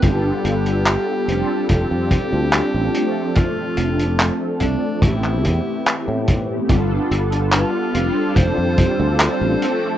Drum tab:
HH |x-xxx-x-x-x-x-x-|x-xxx-x-x-x-x-x-|x-xxx-x-x-x-x-x-|
CP |----x-------x---|----x----x--x---|----x-------x---|
BD |o-------o-o-----|o-----o-o-o---o-|o-------o-o-----|